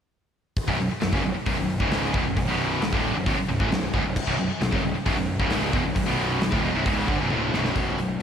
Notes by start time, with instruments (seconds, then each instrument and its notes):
0.57 kick, open hi-hat
0.68 picked electric bass B0, distorted electric guitar B1 F#2, kick
0.79 picked electric bass B0, distorted electric guitar B1 F#2
0.90 muted overdriven electric guitar stroke, muted picked electric bass stroke, muted distorted electric guitar stroke
1.01 picked electric bass B0, distorted electric guitar B1 F#2, snare, open hi-hat
1.13 picked electric bass F#1, distorted electric guitar F#2 C#3, kick
1.24 picked electric bass B0, distorted electric guitar B1 F#2
1.35 muted picked electric bass stroke, muted distorted electric guitar stroke, muted overdriven electric guitar stroke
1.46 picked electric bass B0, distorted electric guitar B1 F#2, kick, open hi-hat
1.58 picked electric bass B0, distorted electric guitar B1 F#2
1.80 picked electric bass C#1, distorted electric guitar C#2 G#2 C#3, kick
1.91 snare, open hi-hat
2.14 picked electric bass E1, distorted electric guitar E2 B2, kick
2.26 picked electric bass B0, distorted electric guitar B1 F#2
2.37 picked electric bass B0, distorted electric guitar B1 F#2, kick, open hi-hat
2.48 picked electric bass B0, distorted electric guitar B1 F#2 B2
2.82 picked electric bass B0, distorted electric guitar B1 F#2, snare, open hi-hat
2.93 picked electric bass D1, distorted electric guitar D2 A2 D3, kick
3.16 picked electric bass B0, distorted electric guitar B1 F#2
3.26 picked electric bass B0, distorted electric guitar B1 F#2, kick, open hi-hat
3.37 muted picked electric bass stroke, muted distorted electric guitar stroke, muted overdriven electric guitar stroke
3.48 picked electric bass B0, distorted electric guitar B1 F#2
3.60 picked electric bass A1, distorted electric guitar A2 E3, kick
3.71 picked electric bass B0, distorted electric guitar B1 F#2, snare, open hi-hat
3.94 picked electric bass C#1, distorted electric guitar C#2 G#2, kick
4.05 picked electric bass B0, distorted electric guitar B1 F#2
4.16 kick, crash
4.27 picked electric bass B0, distorted electric guitar B1 F#2, kick
4.38 picked electric bass B0, distorted electric guitar B1 F#2
4.50 muted picked electric bass stroke, muted overdriven electric guitar stroke, muted distorted electric guitar stroke
4.61 picked electric bass B0, distorted electric guitar B1 F#2, snare, open hi-hat
4.72 picked electric bass F#1, distorted electric guitar F#2 C#3, kick
4.82 picked electric bass B0, distorted electric guitar B1 F#2
4.94 muted distorted electric guitar stroke, muted picked electric bass stroke, muted overdriven electric guitar stroke
5.06 picked electric bass B0, distorted electric guitar B1 F#2, kick, open hi-hat
5.17 picked electric bass B0, distorted electric guitar B1 F#2
5.39 picked electric bass C#1, distorted electric guitar C#2 G#2 C#3, kick, snare
5.50 snare, open hi-hat
5.72 picked electric bass E1, distorted electric guitar E2 B2, kick, snare
5.84 picked electric bass B0, distorted electric guitar B1 F#2
5.94 picked electric bass B0, distorted electric guitar B1 F#2, kick, open hi-hat
6.06 picked electric bass B0, distorted electric guitar B1 F#2 B2
6.40 picked electric bass B0, distorted electric guitar B1 F#2, snare, open hi-hat
6.51 picked electric bass D1, distorted electric guitar D2 A2, kick
6.63 picked electric bass E1, distorted electric guitar E2 B2
6.74 picked electric bass B0, distorted electric guitar B1 F#2
6.85 picked electric bass C#1, distorted electric guitar C#2 G#2 C#3, kick, open hi-hat
7.08 picked electric bass G1, distorted electric guitar G2 D3, kick
7.19 picked electric bass B0, distorted electric guitar B1 F#2
7.30 picked electric bass D1, distorted electric guitar D2 A2 D3, high tom
7.53 picked electric bass B0, distorted electric guitar B1 F#2 B2, snare
7.65 snare
7.75 picked electric bass B0, distorted electric guitar B1 F#2 B2, kick, open hi-hat
7.97 picked electric bass B0, distorted electric guitar B1 F#2, open hi-hat